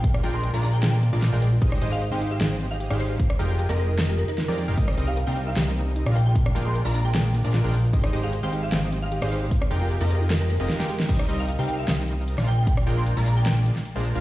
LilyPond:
<<
  \new Staff \with { instrumentName = "Synth pluck" } { \time 4/4 \key bes \mixolydian \tempo 4 = 152 r8. c'''8 bes''16 bes''16 g''16 g''16 r4. r16 | r8. f''16 r16 g''16 r16 f''16 r8. f''16 r8 c''16 r16 | r4 r16 bes'16 bes'16 r16 bes'16 bes'16 bes'16 bes'4~ bes'16 | r8. f''16 r16 g''16 r16 f''16 r4. g''16 g''16 |
r8. c'''8 bes''16 bes''16 g''16 g''16 r4. r16 | r8. f''16 r16 g''16 r16 f''16 r8. f''16 r8 c''16 r16 | r4 r16 bes'16 bes'16 r16 bes'16 bes'16 bes'16 bes'4~ bes'16 | r8. f''16 r16 g''16 r16 f''16 r4. g''16 g''16 |
r8. c'''8 bes''16 bes''16 g''16 g''16 r4. r16 | }
  \new Staff \with { instrumentName = "Supersaw synth" } { \time 4/4 \key bes \mixolydian <aes d' f' bes' f''>8 <aes d' f' bes' g''>8. <aes d' f' bes' d''>4. <aes d' f' bes' d''>8 <aes d' f' bes' g''>16 r8 | <aes ees' g' c'' ees''>8 <aes ees' g' c'' ees''>8 r16 <aes ees' g' c'' f''>8. <aes ees' g' c'' ees''>4~ <aes ees' g' c'' ees''>16 <aes ees' g' c'' f''>8. | r8 <aes f' g' bes' g''>8. <aes f' g' bes' ees''>4. r8 <aes f' g' bes' d''>8 <aes f' g' bes' f''>16 | <g c' ees' bes' ees''>8 <g c' ees' bes' ees''>8 r16 <g c' ees' bes' f''>8. <g c' ees' bes' ees''>4~ <g c' ees' bes' ees''>16 <aes d' f' bes' f''>8.~ |
<aes d' f' bes' f''>8 <aes d' f' bes' g''>8. <aes d' f' bes' d''>4. <aes d' f' bes' d''>8 <aes d' f' bes' g''>16 r8 | <aes ees' g' c'' ees''>8 <aes ees' g' c'' ees''>8 r16 <aes ees' g' c'' f''>8. <aes ees' g' c'' ees''>4~ <aes ees' g' c'' ees''>16 <aes ees' g' c'' f''>8. | r8 <aes f' g' bes' g''>8. <aes f' g' bes' ees''>4. <aes f' g' bes' ees''>8 <aes f' g' bes' g''>16 r8 | <g c' ees' bes' ees''>8 <g c' ees' bes' ees''>8 r16 <g c' ees' bes' f''>8. <g c' ees' bes' ees''>4~ <g c' ees' bes' ees''>16 <aes d' f' bes' f''>8.~ |
<aes d' f' bes' f''>8 <aes d' f' bes' g''>8. <aes d' f' bes' d''>4. r8 <aes d' f' bes' c''>8 <aes d' f' bes' f''>16 | }
  \new Staff \with { instrumentName = "Synth arpeggio sound" } { \time 4/4 \key bes \mixolydian bes16 d'16 f'16 aes'16 bes'16 bes16 d'16 f'16 aes'16 bes'16 bes16 d'16 f'16 aes'16 bes'16 f'16 | c'16 ees'16 g'16 aes'16 c''16 c'16 ees'16 g'16 aes'16 c''16 c'16 ees'16 g'16 aes'16 c''16 g'16 | bes16 c'16 ees'16 f'16 g'16 bes16 c'16 ees'16 f'16 g'16 g'16 ees'16 ees'16 c'16 ees'16 ees'16 | bes16 c'16 ees'16 g'16 bes'16 bes16 c'16 ees'16 g'16 bes'16 bes16 c'16 ees'16 g'16 bes'16 f'16 |
bes16 d'16 f'16 aes'16 bes'16 bes16 d'16 f'16 aes'16 bes'16 bes16 d'16 f'16 aes'16 bes'16 f'16 | c'16 ees'16 g'16 aes'16 c''16 c'16 ees'16 g'16 aes'16 c''16 c'16 ees'16 g'16 aes'16 c''16 g'16 | bes16 c'16 ees'16 f'16 g'16 bes16 c'16 ees'16 f'16 g'16 bes16 c'16 ees'16 f'16 g'16 ees'16 | r1 |
r1 | }
  \new Staff \with { instrumentName = "Analog synth bass" } { \clef bass \time 4/4 \key bes \mixolydian bes,,8 bes,,8. bes,,4. bes,,8 bes,,8. | aes,,8 aes,,8. aes,,8. aes,,4~ aes,,16 aes,,8. | r8 f,,8. f,,4. r8 f,8 f,,16 | c,8 c,8. c,8. c,4~ c,16 bes,,8.~ |
bes,,8 bes,,8. bes,,4. bes,,8 bes,,8. | aes,,8 aes,,8. aes,,8. aes,,4~ aes,,16 aes,,8. | r8 f,,8. f,,4. f,,16 r4 | c,8 c,8. c,8. c,4~ c,16 bes,,8.~ |
bes,,8 bes,,8. bes,,4. r8 bes,,8 bes,,16 | }
  \new DrumStaff \with { instrumentName = "Drums" } \drummode { \time 4/4 <hh bd>16 ss16 hh8 hh8 hh8 <hh sn>8 hh8 <hh sn>8 hho8 | <hh bd>16 ss16 hh8 hh8 hh8 <hh sn>8 hh8 hh16 ss16 hho8 | <hh bd>16 ss16 hh8 hh8 hh8 <hh sn>8 hh8 <hh sn>8 hho8 | <hh bd>16 ss16 hh8 hh8 hh8 <hh sn>8 hh8 hh16 ss16 hho8 |
<hh bd>16 ss16 hh8 hh8 hh8 <hh sn>8 hh8 <hh sn>8 hho8 | <hh bd>16 ss16 hh8 hh8 hh8 <hh sn>8 hh8 hh16 ss16 hho8 | <hh bd>16 ss16 hh8 hh8 hh8 <hh sn>8 hh8 <hh sn>16 sn16 hho16 sn16 | <cymc hh bd>16 ss16 hh8 hh8 hh8 <cymc hh sn>8 hh8 hh16 <ss sn>16 hho8 |
<cymc hh bd>16 ss16 hh8 hh8 hh8 <cymc hh sn>8 hh16 sn16 hh8 hho8 | }
>>